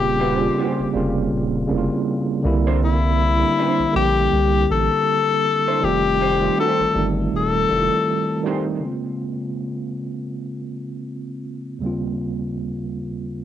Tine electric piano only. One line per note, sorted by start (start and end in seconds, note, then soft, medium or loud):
0.00 0.27 C#3 medium
0.00 0.28 G3 medium
0.00 0.28 A#3 medium
0.00 0.29 C4 medium
0.00 0.29 F4 loud
0.38 0.84 C#3 medium
0.38 0.84 G3 medium
0.38 0.85 A#3 medium
0.38 0.85 C4 medium
0.38 0.86 F4 medium
0.93 1.56 C#3 medium
0.93 1.57 G3 medium
0.93 1.57 A#3 medium
0.93 1.57 C4 medium
0.93 1.58 F4 medium
1.67 2.31 C#3 medium
1.67 2.31 G3 medium
1.67 2.32 A#3 medium
1.67 2.32 C4 medium
1.71 1.78 E4 medium
1.78 2.36 F4 medium
2.42 3.19 D3 medium
2.42 3.20 G3 medium
2.42 3.20 A#3 medium
2.42 3.21 C4 medium
2.46 3.21 E4 loud
3.39 3.84 D3 medium
3.39 3.85 G3 medium
3.39 3.85 A#3 medium
3.39 3.86 C4 medium
3.39 3.86 D4 medium
3.92 5.16 D3 medium
3.92 5.16 G3 medium
3.92 5.17 A#3 medium
3.92 5.17 C4 medium
3.92 5.18 G4 medium
5.80 6.28 D#3 medium
5.80 6.28 G3 medium
5.80 6.29 A3 medium
5.80 6.29 C4 medium
5.80 6.29 F4 medium
6.40 6.85 D#3 medium
6.40 6.85 G3 medium
6.40 6.86 A3 medium
6.40 6.86 C4 medium
6.40 6.86 F4 medium
6.93 7.56 D#3 medium
6.93 7.57 G3 medium
6.93 7.57 A3 medium
6.93 7.58 C4 medium
6.93 7.58 D#4 medium
7.69 8.32 D#3 medium
7.69 8.32 G3 medium
7.69 8.32 A3 medium
7.69 8.33 C4 medium
7.69 7.78 E4 medium
7.79 8.37 F4 medium
8.43 8.75 D#3 medium
8.43 8.75 G3 medium
8.43 8.76 A3 medium
8.43 8.77 C4 medium
8.43 8.77 D#4 medium
8.80 11.77 C#3 medium
8.80 11.78 G#3 medium
8.80 11.79 A#3 medium
8.85 11.80 C4 medium
8.85 11.80 F4 medium
11.79 13.44 D#2 medium
11.79 13.44 C#3 medium
11.79 13.44 G3 medium
11.83 13.44 A#3 medium
11.83 13.44 C4 medium
11.83 13.44 F4 medium